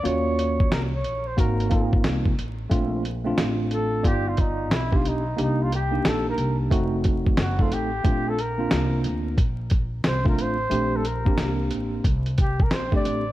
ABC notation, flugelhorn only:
X:1
M:4/4
L:1/16
Q:"Swing 16ths" 1/4=90
K:Bb
V:1 name="Flugelhorn"
_d4 B d2 c B4 z4 | z6 A2 G F E2 =E F _E2 | E F G2 A B2 z4 z _G F =G2- | G A B4 z6 c B c2- |
c A B4 z4 G B c d3 |]